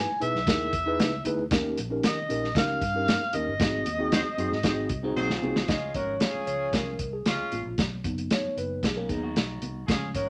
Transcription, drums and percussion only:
0.22 closed hi-hat
0.36 snare
0.47 kick, snare, closed hi-hat, muted conga
0.73 kick, closed hi-hat, muted conga
1.00 snare, closed hi-hat, high conga
1.25 closed hi-hat, high conga
1.39 high conga
1.51 kick, snare, closed hi-hat, muted conga
1.78 closed hi-hat, muted conga
2.03 snare, closed hi-hat, high conga
2.30 closed hi-hat
2.44 snare
2.55 kick, snare, closed hi-hat, muted conga
2.81 kick, closed hi-hat
3.08 snare, closed hi-hat, high conga
3.33 closed hi-hat, high conga
3.48 high conga
3.60 kick, snare, closed hi-hat, muted conga
3.86 closed hi-hat, muted conga
4.12 snare, closed hi-hat, high conga
4.38 closed hi-hat
4.52 snare
4.63 kick, snare, closed hi-hat, muted conga
4.89 kick, closed hi-hat, muted conga
5.17 high conga
5.30 snare
5.44 high conga
5.56 snare, high conga
5.68 kick, snare, closed hi-hat, muted conga
5.94 kick, closed hi-hat, muted conga
6.20 snare, closed hi-hat, high conga
6.47 closed hi-hat
6.73 kick, snare, closed hi-hat, muted conga
6.99 kick, closed hi-hat, muted conga
7.26 snare, closed hi-hat, high conga
7.52 closed hi-hat, high conga
7.78 kick, snare, closed hi-hat, muted conga
8.04 kick, closed hi-hat, muted conga
8.18 closed hi-hat
8.31 snare, closed hi-hat, high conga
8.58 closed hi-hat
8.83 kick, snare, closed hi-hat, muted conga
9.09 kick, closed hi-hat
9.36 snare, closed hi-hat, high conga
9.62 closed hi-hat, high conga
9.88 kick, snare, closed hi-hat, muted conga
10.14 kick, closed hi-hat, muted conga

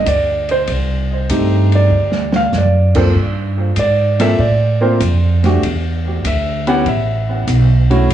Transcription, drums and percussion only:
0.06 kick, hi-hat pedal, ride
0.49 ride
0.67 kick, ride
1.29 kick, hi-hat pedal, ride
1.72 ride
2.12 snare
2.32 snare
2.53 snare, hi-hat pedal
2.95 kick, crash
3.15 kick
3.76 kick, hi-hat pedal, ride
4.20 snare, ride
4.39 kick
5.00 kick, hi-hat pedal, ride
5.44 snare, ride
5.63 kick, ride
6.24 kick, hi-hat pedal, ride
6.67 ride
6.86 kick, ride
7.48 kick, hi-hat pedal, ride
7.91 ride
8.09 kick, ride

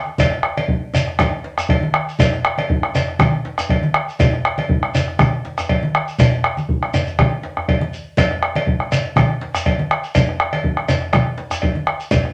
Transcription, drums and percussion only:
0.06 high conga
0.18 bombo low, cowbell, djembe slap, low conga, djembe bass, shekere
0.32 bombo rim, djembe tone
0.43 bombo rim
0.57 cowbell, djembe slap, high conga
0.68 bombo low, djembe slap
0.94 cowbell, djembe slap, djembe tone, djembe bass, shekere
1.07 bombo rim
1.19 bombo rim, bombo low, cowbell, high conga, low conga, shekere
1.33 bombo rim, high conga
1.44 djembe slap, high conga
1.58 bombo rim, djembe tone, djembe bass, shekere
1.69 bombo low, cowbell, high conga
1.82 djembe slap, high conga
1.94 bombo rim
2.09 shekere
2.19 bombo low, cowbell, djembe slap, low conga, djembe bass, shekere
2.33 bombo rim, djembe slap, djembe tone
2.45 bombo rim
2.58 cowbell, djembe slap, high conga
2.70 bombo low, djembe slap
2.83 bombo rim
2.95 cowbell, djembe slap, djembe tone, djembe bass, shekere
3.08 bombo rim
3.19 bombo rim, bombo low, cowbell, high conga, low conga, shekere
3.33 bombo rim, djembe slap, high conga
3.45 djembe slap
3.58 bombo rim, djembe tone, djembe bass, shekere
3.69 bombo low, cowbell, high conga
3.83 djembe slap, high conga
3.94 bombo rim
4.09 shekere
4.19 bombo low, cowbell, djembe slap, low conga, djembe bass, shekere
4.33 bombo rim, djembe slap, djembe tone
4.45 bombo rim
4.58 cowbell, djembe slap, high conga
4.69 bombo low, djembe slap
4.83 bombo rim
4.95 cowbell, djembe slap, djembe tone, djembe bass, shekere
5.08 bombo rim
5.19 bombo rim, bombo low, cowbell, high conga, low conga, shekere
5.33 bombo rim, djembe slap, high conga
5.45 djembe slap, high conga
5.58 bombo rim, djembe tone, djembe bass, shekere
5.69 bombo low, cowbell, high conga
5.83 djembe slap, high conga
5.95 bombo rim
6.08 shekere
6.19 bombo rim, bombo low, cowbell, djembe slap, high conga, low conga, djembe bass, shekere
6.44 bombo rim, djembe slap
6.57 djembe slap, high conga, shekere
6.69 bombo low, high conga
6.82 bombo rim, djembe slap, high conga
6.94 cowbell, djembe slap, djembe tone, djembe bass, shekere
7.07 djembe slap, high conga, shekere
7.19 bombo rim, bombo low, cowbell, high conga, low conga
7.32 bombo rim
7.43 bombo rim, djembe slap
7.57 bombo rim, djembe tone, djembe bass
7.68 bombo low, cowbell
7.81 bombo rim, djembe slap, high conga
7.93 djembe slap, high conga, shekere
8.17 bombo low, cowbell, djembe slap, low conga, djembe bass, shekere
8.31 bombo rim, djembe slap, djembe tone
8.43 bombo rim
8.55 cowbell, djembe slap, high conga
8.67 bombo low, djembe slap
8.80 bombo rim
8.92 cowbell, djembe slap, djembe tone, shekere
9.16 bombo rim, bombo low, cowbell, high conga, low conga, shekere
9.30 bombo rim, djembe slap, high conga
9.40 djembe slap, high conga
9.54 bombo rim, djembe tone, djembe bass, shekere
9.66 bombo low, cowbell
9.79 djembe slap, high conga
9.91 bombo rim
10.04 shekere
10.15 bombo low, cowbell, djembe slap, low conga, djembe bass, shekere
10.29 bombo rim, djembe slap, djembe tone
10.40 bombo rim
10.52 cowbell, djembe slap, high conga
10.64 bombo low, djembe slap
10.77 bombo rim
10.88 cowbell, djembe slap, djembe tone, djembe bass, shekere
11.02 bombo rim
11.13 bombo rim, bombo low, cowbell, high conga, low conga, shekere
11.26 bombo rim, djembe slap, high conga
11.38 djembe slap, high conga
11.50 bombo rim, djembe tone, djembe bass, shekere
11.62 bombo low, cowbell, high conga
11.75 djembe slap, high conga
11.87 bombo rim
12.00 shekere
12.11 bombo low, cowbell, djembe slap, low conga, djembe bass, shekere
12.24 bombo rim, djembe slap, djembe tone

